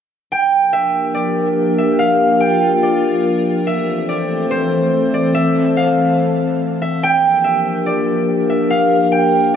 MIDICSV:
0, 0, Header, 1, 4, 480
1, 0, Start_track
1, 0, Tempo, 419580
1, 356, Time_signature, 4, 2, 24, 8
1, 10938, End_track
2, 0, Start_track
2, 0, Title_t, "Harp"
2, 0, Program_c, 0, 46
2, 363, Note_on_c, 0, 79, 95
2, 833, Note_on_c, 0, 76, 84
2, 1310, Note_on_c, 0, 74, 76
2, 2035, Note_off_c, 0, 76, 0
2, 2040, Note_on_c, 0, 76, 74
2, 2140, Note_off_c, 0, 79, 0
2, 2275, Note_on_c, 0, 77, 91
2, 2343, Note_off_c, 0, 76, 0
2, 2750, Note_on_c, 0, 79, 84
2, 3231, Note_off_c, 0, 74, 0
2, 3235, Note_on_c, 0, 74, 74
2, 4179, Note_off_c, 0, 77, 0
2, 4197, Note_on_c, 0, 76, 97
2, 4526, Note_off_c, 0, 79, 0
2, 4671, Note_off_c, 0, 74, 0
2, 4676, Note_on_c, 0, 74, 78
2, 5156, Note_on_c, 0, 72, 85
2, 5874, Note_off_c, 0, 74, 0
2, 5878, Note_on_c, 0, 74, 74
2, 6111, Note_off_c, 0, 76, 0
2, 6116, Note_on_c, 0, 76, 104
2, 6598, Note_on_c, 0, 77, 79
2, 6667, Note_off_c, 0, 76, 0
2, 7420, Note_off_c, 0, 72, 0
2, 7799, Note_on_c, 0, 76, 73
2, 7867, Note_off_c, 0, 77, 0
2, 7991, Note_off_c, 0, 74, 0
2, 8045, Note_on_c, 0, 79, 98
2, 8508, Note_off_c, 0, 76, 0
2, 8513, Note_on_c, 0, 76, 80
2, 8994, Note_on_c, 0, 74, 74
2, 9715, Note_off_c, 0, 76, 0
2, 9719, Note_on_c, 0, 76, 74
2, 9822, Note_off_c, 0, 79, 0
2, 9956, Note_on_c, 0, 77, 89
2, 10025, Note_off_c, 0, 76, 0
2, 10430, Note_on_c, 0, 79, 83
2, 10912, Note_off_c, 0, 74, 0
2, 10938, Note_off_c, 0, 77, 0
2, 10938, Note_off_c, 0, 79, 0
2, 10938, End_track
3, 0, Start_track
3, 0, Title_t, "Synth texture"
3, 0, Program_c, 1, 99
3, 355, Note_on_c, 1, 79, 83
3, 356, Note_on_c, 1, 65, 79
3, 356, Note_on_c, 1, 70, 72
3, 4157, Note_off_c, 1, 79, 0
3, 4158, Note_off_c, 1, 65, 0
3, 4158, Note_off_c, 1, 70, 0
3, 4197, Note_on_c, 1, 52, 78
3, 4197, Note_on_c, 1, 72, 73
3, 4197, Note_on_c, 1, 81, 83
3, 7998, Note_off_c, 1, 52, 0
3, 7998, Note_off_c, 1, 72, 0
3, 7998, Note_off_c, 1, 81, 0
3, 8034, Note_on_c, 1, 65, 76
3, 8034, Note_on_c, 1, 79, 86
3, 8035, Note_on_c, 1, 70, 73
3, 10938, Note_off_c, 1, 65, 0
3, 10938, Note_off_c, 1, 70, 0
3, 10938, Note_off_c, 1, 79, 0
3, 10938, End_track
4, 0, Start_track
4, 0, Title_t, "Ambient pad"
4, 0, Program_c, 2, 92
4, 358, Note_on_c, 2, 53, 85
4, 358, Note_on_c, 2, 58, 74
4, 358, Note_on_c, 2, 62, 75
4, 358, Note_on_c, 2, 67, 73
4, 359, Note_on_c, 2, 70, 94
4, 4159, Note_off_c, 2, 53, 0
4, 4159, Note_off_c, 2, 58, 0
4, 4159, Note_off_c, 2, 62, 0
4, 4159, Note_off_c, 2, 67, 0
4, 4159, Note_off_c, 2, 70, 0
4, 4194, Note_on_c, 2, 52, 85
4, 4194, Note_on_c, 2, 57, 79
4, 4194, Note_on_c, 2, 60, 73
4, 4194, Note_on_c, 2, 72, 92
4, 4195, Note_on_c, 2, 69, 75
4, 7996, Note_off_c, 2, 52, 0
4, 7997, Note_off_c, 2, 57, 0
4, 7997, Note_off_c, 2, 60, 0
4, 7997, Note_off_c, 2, 69, 0
4, 7997, Note_off_c, 2, 72, 0
4, 8034, Note_on_c, 2, 53, 84
4, 8034, Note_on_c, 2, 58, 72
4, 8035, Note_on_c, 2, 62, 73
4, 8035, Note_on_c, 2, 67, 72
4, 8036, Note_on_c, 2, 70, 88
4, 10938, Note_off_c, 2, 53, 0
4, 10938, Note_off_c, 2, 58, 0
4, 10938, Note_off_c, 2, 62, 0
4, 10938, Note_off_c, 2, 67, 0
4, 10938, Note_off_c, 2, 70, 0
4, 10938, End_track
0, 0, End_of_file